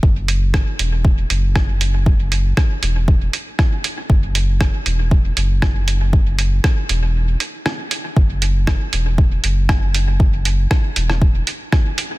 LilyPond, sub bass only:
\new Staff \with { instrumentName = "Sub bass" } { \clef bass \time 4/4 \key e \mixolydian \tempo 4 = 118 fis,,4 r8 e,,4 fis,,4.~ | fis,,4 r8 e,,4 r4. | fis,,4 r8 e,,4 fis,,4.~ | fis,,4 r8 e,,4 r4. |
fis,,4 r8 e,,4 fis,,4.~ | fis,,4 r8 e,,4 r4. | }